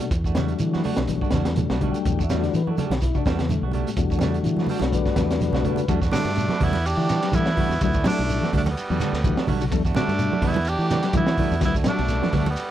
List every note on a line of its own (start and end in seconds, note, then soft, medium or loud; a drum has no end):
0.00 0.08 B2 medium
0.00 0.10 A3 soft
0.00 0.10 F#4 medium
0.00 shekere medium
0.11 0.53 E2 medium
0.11 muted clean electric guitar stroke medium
0.11 kick loud
0.11 closed hi-hat medium
0.11 high conga soft
0.11 shekere medium
0.24 0.36 A3 soft
0.24 0.37 D4 soft
0.24 0.36 F#4 medium
0.24 kick medium
0.24 shekere medium
0.35 0.50 C#3 medium
0.35 2.25 F#3 medium
0.35 2.25 G3 medium
0.35 0.52 G3 medium
0.35 2.25 A3 soft
0.35 0.52 A3 medium
0.35 2.25 D4 medium
0.35 0.53 F#4 medium
0.35 muted clean electric guitar stroke medium
0.35 snare medium
0.35 closed hi-hat soft
0.35 high conga medium
0.35 shekere medium
0.48 closed hi-hat medium
0.48 shekere soft
0.59 0.74 D3 medium
0.59 0.81 E3 medium
0.59 closed hi-hat medium
0.59 shekere medium
0.73 0.84 A3 medium
0.73 0.84 F#4 medium
0.73 snare soft
0.73 high conga medium
0.84 1.00 A3 medium
0.84 1.00 D4 medium
0.84 1.00 F#4 medium
0.84 muted clean electric guitar stroke medium
0.84 open hi-hat medium
0.84 low conga medium
0.84 shekere soft
0.96 1.18 B1 medium
0.96 snare medium
0.96 closed hi-hat medium
0.96 high conga medium
1.07 1.22 E3 medium
1.07 kick medium
1.07 closed hi-hat medium
1.07 high conga soft
1.07 shekere medium
1.21 1.33 A3 soft
1.21 1.33 D4 medium
1.21 1.33 F#4 medium
1.21 kick medium
1.21 shekere soft
1.31 1.65 E2 medium
1.31 1.46 C#3 medium
1.31 1.48 G3 medium
1.31 kick medium
1.31 snare medium
1.31 closed hi-hat medium
1.31 low conga medium
1.31 shekere medium
1.35 1.49 D4 medium
1.35 1.49 F#4 medium
1.45 snare medium
1.45 closed hi-hat medium
1.45 shekere soft
1.56 1.71 B2 medium
1.56 closed hi-hat medium
1.56 high conga medium
1.56 low conga medium
1.56 shekere medium
1.70 1.91 B1 loud
1.70 1.81 A3 medium
1.70 1.81 D4 medium
1.70 1.81 F#4 medium
1.70 snare medium
1.81 1.95 D3 medium
1.81 1.97 G3 medium
1.81 1.97 A3 medium
1.81 1.97 D4 medium
1.81 1.97 F#4 medium
1.81 kick medium
1.81 closed hi-hat soft
1.81 low conga medium
1.92 2.21 G5 medium
1.92 closed hi-hat medium
1.92 shekere medium
2.05 2.47 E2 medium
2.05 2.20 B2 medium
2.05 kick loud
2.05 closed hi-hat medium
2.05 shekere medium
2.19 2.30 D4 medium
2.19 2.29 F#4 medium
2.19 kick medium
2.19 shekere medium
2.24 2.38 E5 medium
2.30 2.62 G3 medium
2.30 2.45 G3 medium
2.30 2.63 A3 medium
2.30 2.45 A3 medium
2.30 2.63 D4 soft
2.30 2.45 D4 medium
2.30 2.63 F#4 medium
2.30 2.45 F#4 medium
2.30 snare medium
2.30 closed hi-hat medium
2.30 high conga medium
2.30 shekere medium
2.41 2.49 D3 medium
2.41 2.54 D5 loud
2.41 snare soft
2.41 closed hi-hat soft
2.41 shekere soft
2.53 2.67 E3 medium
2.53 2.74 E3 medium
2.53 2.70 B4 medium
2.53 closed hi-hat medium
2.53 shekere medium
2.67 2.77 A3 soft
2.67 2.77 D4 soft
2.67 2.77 F#4 medium
2.67 2.85 A4 medium
2.67 high conga medium
2.77 2.85 C#3 medium
2.77 2.93 G3 medium
2.77 2.93 A3 medium
2.77 2.93 D4 medium
2.77 2.93 F#4 medium
2.77 closed hi-hat medium
2.77 high conga medium
2.77 low conga medium
2.77 shekere soft
2.87 3.11 B1 medium
2.87 3.02 G4 medium
2.91 3.05 D3 medium
2.91 snare medium
2.91 closed hi-hat medium
2.91 high conga loud
3.01 3.17 E4 medium
3.01 kick medium
3.01 closed hi-hat medium
3.01 high conga soft
3.01 shekere medium
3.14 3.21 C#3 medium
3.14 3.25 A3 medium
3.14 3.25 D4 medium
3.14 3.33 D4 loud
3.14 3.25 F#4 medium
3.14 kick medium
3.14 shekere soft
3.26 3.58 E2 medium
3.26 3.41 G3 medium
3.26 3.41 A3 medium
3.26 3.41 D4 medium
3.26 3.41 F#4 medium
3.26 kick medium
3.26 snare medium
3.26 closed hi-hat soft
3.26 shekere medium
3.35 3.50 B3 medium
3.39 3.45 C#3 medium
3.39 snare medium
3.39 closed hi-hat medium
3.39 shekere soft
3.49 3.64 D3 medium
3.49 3.65 A3 medium
3.49 closed hi-hat medium
3.49 high conga medium
3.49 low conga medium
3.49 shekere medium
3.62 3.83 B1 medium
3.62 3.73 A3 soft
3.62 3.74 F#4 medium
3.62 muted clean electric guitar stroke medium
3.67 3.96 G3 medium
3.71 3.89 G3 medium
3.71 3.89 A3 medium
3.71 3.89 D4 medium
3.71 3.89 F#4 medium
3.71 closed hi-hat soft
3.71 low conga medium
3.87 3.93 A2 medium
3.87 closed hi-hat soft
3.87 shekere medium
3.96 4.39 E2 medium
3.96 4.12 B2 medium
3.96 5.85 G3 medium
3.96 5.85 A3 medium
3.96 5.85 D4 soft
3.96 5.86 F#4 medium
3.96 kick medium
3.96 closed hi-hat medium
3.96 high conga soft
3.96 shekere medium
4.10 4.21 A3 soft
4.10 4.22 D4 soft
4.10 4.22 F#4 medium
4.10 kick medium
4.10 shekere medium
4.19 4.36 C#3 medium
4.19 4.37 G3 medium
4.19 4.37 A3 medium
4.19 snare medium
4.19 closed hi-hat soft
4.19 high conga medium
4.19 shekere medium
4.23 4.38 D4 medium
4.23 4.38 F#4 medium
4.34 closed hi-hat soft
4.34 shekere soft
4.43 4.60 D3 medium
4.43 4.65 E3 medium
4.43 closed hi-hat medium
4.43 shekere medium
4.57 4.69 A3 soft
4.57 4.70 D4 soft
4.57 4.70 F#4 medium
4.57 snare soft
4.57 high conga medium
4.67 4.85 G3 medium
4.67 muted clean electric guitar stroke medium
4.67 open hi-hat medium
4.67 low conga medium
4.71 4.85 D4 medium
4.71 4.85 F#4 medium
4.71 shekere soft
4.80 5.03 B1 medium
4.80 snare medium
4.80 closed hi-hat medium
4.80 high conga medium
4.90 5.07 E3 medium
4.90 4.94 C#5 medium
4.90 kick medium
4.90 closed hi-hat medium
4.90 shekere medium
4.95 5.16 B4 medium
4.95 5.17 D5 loud
5.05 5.16 A3 soft
5.05 5.16 D4 medium
5.05 5.17 F#4 medium
5.05 kick medium
5.05 snare soft
5.05 shekere soft
5.16 5.49 E2 medium
5.16 5.31 C#3 medium
5.16 5.32 A3 medium
5.16 5.33 D4 medium
5.16 5.40 B4 medium
5.16 5.41 D5 medium
5.16 muted clean electric guitar stroke medium
5.16 kick medium
5.16 snare medium
5.16 closed hi-hat medium
5.16 high conga medium
5.16 shekere medium
5.31 snare medium
5.31 closed hi-hat medium
5.31 shekere soft
5.40 5.55 B2 medium
5.40 5.64 B4 medium
5.40 5.65 D5 medium
5.40 snare soft
5.40 closed hi-hat medium
5.40 high conga medium
5.40 shekere medium
5.52 5.74 B1 medium
5.52 5.64 A3 medium
5.52 5.64 D4 medium
5.52 5.64 F#4 medium
5.52 snare medium
5.52 low conga medium
5.64 5.79 D3 medium
5.64 5.80 G3 medium
5.64 5.81 A3 medium
5.64 5.81 D4 medium
5.64 5.81 F#4 medium
5.64 5.89 B4 loud
5.64 kick medium
5.64 closed hi-hat soft
5.64 low conga medium
5.76 closed hi-hat medium
5.76 low conga loud
5.76 shekere medium
5.88 6.10 E2 loud
5.88 6.03 F#3 medium
5.88 6.02 G3 medium
5.88 6.00 G3 medium
5.88 6.01 A3 medium
5.88 6.00 A3 medium
5.88 6.01 D4 medium
5.88 6.00 F#4 medium
5.88 6.00 F#4 loud
5.88 kick loud
5.88 ride bell medium
5.88 high conga soft
5.88 shekere medium
6.01 6.12 A3 soft
6.01 6.12 D4 medium
6.01 6.13 F#4 medium
6.01 kick medium
6.01 snare soft
6.01 shekere medium
6.12 6.28 D3 medium
6.12 6.28 G3 medium
6.12 6.54 G3 medium
6.12 6.29 A3 medium
6.12 6.54 A3 medium
6.12 6.65 A3 loud
6.12 6.65 D4 loud
6.12 6.29 D4 medium
6.12 6.54 D4 medium
6.12 6.29 F#4 medium
6.12 6.54 F#4 medium
6.12 muted fingered electric bass stroke soft
6.12 snare medium
6.12 ride bell medium
6.12 high conga loud
6.12 shekere medium
6.25 6.46 G2 medium
6.25 snare soft
6.25 ride bell medium
6.25 shekere soft
6.35 6.51 B2 medium
6.35 ride bell soft
6.35 high conga soft
6.35 shekere loud
6.49 6.61 A3 soft
6.49 6.61 D4 soft
6.49 6.61 F#4 medium
6.49 snare soft
6.49 high conga medium
6.60 6.93 E2 medium
6.60 6.75 C#3 medium
6.60 6.77 G3 medium
6.60 6.77 A3 medium
6.60 6.88 B3 medium
6.60 6.77 D4 medium
6.60 6.87 E4 medium
6.60 6.77 F#4 medium
6.60 kick medium
6.60 open hi-hat medium
6.60 low conga medium
6.60 shekere soft
6.73 ride bell medium
6.73 high conga medium
6.84 7.37 D4 medium
6.84 7.36 G4 loud
6.84 ride bell medium
6.84 high conga soft
6.84 shekere medium
6.97 7.13 D3 medium
6.97 7.19 E3 loud
6.97 7.09 A3 soft
6.97 7.10 D4 medium
6.97 7.09 F#4 medium
6.97 shekere soft
7.09 7.25 G3 medium
7.09 7.25 D4 medium
7.09 7.26 F#4 medium
7.09 muted clean electric guitar stroke medium
7.09 snare soft
7.09 ride bell medium
7.09 shekere medium
7.22 7.29 F#3 medium
7.22 snare soft
7.22 ride bell medium
7.22 shekere soft
7.32 7.54 E3 loud
7.32 7.48 G3 medium
7.32 7.50 G3 medium
7.32 7.50 A3 medium
7.32 7.50 D4 medium
7.32 7.82 E4 loud
7.32 7.50 A4 medium
7.32 kick medium
7.32 ride bell medium
7.32 high conga medium
7.32 shekere medium
7.36 7.82 B3 loud
7.46 7.58 A3 soft
7.46 7.58 D4 medium
7.46 7.58 F#4 medium
7.46 snare medium
7.57 7.72 E3 medium
7.57 7.73 G3 medium
7.57 7.73 A3 medium
7.57 7.73 D4 medium
7.57 7.74 F#4 medium
7.57 kick medium
7.57 open hi-hat medium
7.57 low conga medium
7.69 7.79 E2 loud
7.69 7.75 D4 medium
7.69 7.76 F#4 medium
7.69 snare soft
7.69 shekere medium
7.81 8.02 D2 medium
7.81 7.96 F#3 medium
7.81 7.92 G3 medium
7.81 7.92 A3 medium
7.81 8.05 B3 medium
7.81 7.92 D4 medium
7.81 8.04 E4 medium
7.81 7.93 F#4 medium
7.81 kick loud
7.81 ride bell medium
7.81 high conga soft
7.81 shekere medium
7.93 8.05 A3 soft
7.93 8.05 D4 medium
7.93 8.05 F#4 medium
7.93 kick medium
7.93 shekere medium
8.04 8.19 F#3 medium
8.04 8.45 G3 medium
8.04 8.20 G3 medium
8.04 8.45 A3 medium
8.04 8.21 A3 medium
8.04 8.45 D4 medium
8.04 8.21 D4 medium
8.04 8.50 D4 loud
8.04 8.46 E4 medium
8.04 8.21 F#4 medium
8.04 snare medium
8.04 ride bell medium
8.04 high conga loud
8.04 shekere loud
8.10 8.52 A3 loud
8.19 8.39 B1 medium
8.19 snare soft
8.19 ride bell medium
8.19 shekere soft
8.29 ride bell medium
8.29 high conga soft
8.29 shekere medium
8.42 8.48 E3 medium
8.42 8.53 A3 soft
8.42 8.53 D4 soft
8.42 8.53 F#4 medium
8.42 snare soft
8.42 high conga medium
8.53 8.74 D2 medium
8.53 8.67 D3 medium
8.53 8.68 G3 medium
8.53 8.69 A3 medium
8.53 8.69 D4 medium
8.53 8.69 F#4 medium
8.53 kick medium
8.53 open hi-hat medium
8.53 low conga medium
8.53 shekere soft
8.57 8.62 A3 medium
8.57 8.62 D4 medium
8.66 9.46 B3 medium
8.66 ride bell medium
8.66 high conga loud
8.72 9.47 G3 medium
8.77 ride bell medium
8.77 high conga soft
8.77 shekere medium
8.90 8.99 E2 loud
8.90 8.96 F#3 medium
8.90 9.01 A3 soft
8.90 9.01 D4 medium
8.90 9.01 F#4 medium
8.90 shekere soft
9.00 9.15 D3 medium
9.00 9.16 G3 medium
9.00 9.16 A3 medium
9.00 9.16 D4 medium
9.00 muted clean electric guitar stroke medium
9.00 snare soft
9.00 ride bell medium
9.00 low conga medium
9.00 shekere medium
9.13 9.34 D2 loud
9.13 snare soft
9.13 ride bell medium
9.13 shekere soft
9.24 9.39 E3 medium
9.24 9.40 G3 loud
9.24 9.41 A3 medium
9.24 9.40 D4 medium
9.24 9.40 F#4 loud
9.24 kick medium
9.24 ride bell medium
9.24 high conga medium
9.24 low conga medium
9.24 shekere medium
9.37 9.47 A3 medium
9.37 9.48 D4 medium
9.37 9.48 F#4 medium
9.37 snare medium
9.37 high conga medium
9.47 9.69 B1 medium
9.47 9.56 D3 medium
9.47 9.63 G3 medium
9.47 9.64 A3 medium
9.47 9.64 D4 medium
9.47 9.64 F#4 medium
9.47 kick medium
9.47 open hi-hat medium
9.47 low conga medium
9.61 9.67 C#3 medium
9.61 9.66 D4 loud
9.61 9.66 F#4 loud
9.61 ride bell medium
9.61 shekere medium
9.71 9.93 E2 loud
9.71 9.85 F#3 medium
9.71 9.82 G3 loud
9.71 9.83 A3 loud
9.71 9.83 D4 loud
9.71 9.83 A4 loud
9.71 kick loud
9.71 ride bell medium
9.71 shekere medium
9.85 9.95 A3 soft
9.85 9.95 D4 medium
9.85 9.96 F#4 medium
9.85 kick medium
9.85 shekere medium
9.95 10.09 D3 medium
9.95 10.11 G3 medium
9.95 10.37 G3 medium
9.95 10.11 A3 medium
9.95 10.36 A3 medium
9.95 10.46 A3 loud
9.95 10.49 D4 loud
9.95 10.11 D4 medium
9.95 10.37 D4 medium
9.95 10.37 F#4 medium
9.95 10.12 F#4 medium
9.95 muted fingered electric bass stroke soft
9.95 snare medium
9.95 ride bell medium
9.95 high conga medium
9.95 shekere loud
10.08 10.29 G2 medium
10.08 snare soft
10.08 ride bell medium
10.08 shekere soft
10.19 10.34 B2 medium
10.19 ride bell medium
10.19 high conga soft
10.19 shekere loud
10.33 10.42 A3 soft
10.33 10.43 D4 medium
10.33 10.43 F#4 medium
10.33 high conga loud
10.42 10.75 E2 loud
10.42 10.57 C#3 medium
10.42 10.59 G3 medium
10.42 10.59 A3 medium
10.42 10.70 B3 medium
10.42 10.59 D4 medium
10.42 10.59 F#4 medium
10.42 kick medium
10.42 open hi-hat medium
10.42 low conga medium
10.42 shekere soft
10.47 10.70 E4 loud
10.54 ride bell medium
10.54 high conga loud
10.65 11.15 D4 medium
10.65 11.16 G4 loud
10.65 ride bell medium
10.65 shekere medium
10.79 11.00 E3 medium
10.79 10.91 A3 medium
10.79 10.91 D4 medium
10.79 10.91 F#4 medium
10.79 shekere soft
10.90 11.07 G3 medium
10.90 11.07 A3 medium
10.90 11.07 D4 medium
10.90 11.07 F#4 medium
10.90 snare soft
10.90 ride bell medium
10.90 low conga medium
10.90 shekere medium
11.03 11.10 F#3 medium
11.03 snare soft
11.03 ride bell medium
11.03 shekere soft
11.13 11.35 E3 loud
11.13 11.30 G3 medium
11.13 11.29 G3 medium
11.13 11.30 A3 medium
11.13 11.60 B3 medium
11.13 11.31 D4 medium
11.13 11.60 E4 loud
11.13 11.30 F#4 medium
11.13 kick medium
11.13 ride bell medium
11.13 high conga medium
11.13 low conga medium
11.13 shekere medium
11.27 11.38 A3 soft
11.27 11.38 D4 medium
11.27 11.38 F#4 medium
11.27 snare medium
11.37 11.53 E3 medium
11.37 11.54 G3 medium
11.37 11.54 A3 medium
11.37 11.54 D4 medium
11.37 11.54 F#4 medium
11.37 kick medium
11.37 open hi-hat medium
11.37 low conga medium
11.51 11.61 E2 loud
11.51 11.56 D4 medium
11.51 11.56 F#4 loud
11.51 shekere medium
11.60 11.83 D2 loud
11.60 11.76 F#3 medium
11.60 11.72 G3 medium
11.60 11.72 A3 medium
11.60 11.74 B3 medium
11.60 11.72 D4 medium
11.60 11.72 F#4 loud
11.60 kick loud
11.60 snare soft
11.60 ride bell medium
11.60 shekere medium
11.65 11.75 E4 loud
11.74 11.85 A3 soft
11.74 11.85 D4 medium
11.74 11.86 F#4 medium
11.74 kick medium
11.74 shekere medium
11.84 11.99 F#3 medium
11.84 12.26 G3 medium
11.84 12.02 G3 medium
11.84 12.26 A3 medium
11.84 12.02 A3 medium
11.84 12.26 D4 medium
11.84 12.02 D4 medium
11.84 12.26 F#4 medium
11.84 12.02 F#4 medium
11.84 snare medium
11.84 ride bell medium
11.84 high conga medium
11.84 shekere medium
11.88 12.32 A3 loud
11.88 12.32 D4 loud
11.98 12.20 B1 loud
11.98 snare soft
11.98 ride bell soft
11.98 shekere soft
12.08 snare soft
12.08 ride bell medium
12.08 high conga soft
12.08 shekere loud
12.22 12.29 E3 medium
12.22 12.32 A3 soft
12.22 12.32 D4 medium
12.22 12.33 F#4 medium
12.22 snare soft
12.22 high conga loud
12.32 12.55 D2 medium
12.32 12.48 D3 medium
12.32 12.49 G3 medium
12.32 12.49 A3 medium
12.32 12.49 D4 medium
12.32 12.47 D4 medium
12.32 12.49 F#4 medium
12.32 kick medium
12.32 snare soft
12.32 open hi-hat medium
12.32 low conga medium
12.32 shekere soft
12.37 12.48 A3 medium
12.46 12.71 G3 medium
12.46 12.71 B3 medium
12.46 ride bell medium
12.46 high conga loud
12.56 ride bell medium
12.56 high conga soft
12.56 shekere medium